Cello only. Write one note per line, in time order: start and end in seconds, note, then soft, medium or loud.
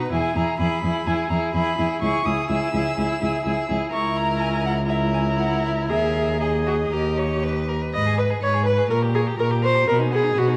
0.12 0.20 E2 medium
0.36 0.44 E2 soft
0.60 0.68 E2 soft
0.83 0.91 E2 medium
1.07 1.15 E2 soft
1.31 1.39 E2 soft
1.55 1.63 E2 soft
1.78 1.86 E2 soft
2.02 2.10 C#2 soft
2.26 2.34 C#2 soft
2.50 2.58 C#2 soft
2.74 2.82 C#2 soft
2.98 3.06 C#2 soft
3.22 3.30 C#2 soft
3.46 3.54 C#2 soft
3.70 3.78 C#2 soft
3.94 5.91 C#2 soft
5.89 6.92 D#2 soft
6.92 7.71 D#2 soft
7.94 8.37 G#2 soft
8.42 8.85 G#2 soft
8.90 9.34 A#2 soft
9.39 9.83 A#2 soft
9.88 10.31 B2 soft
10.37 10.57 B2 soft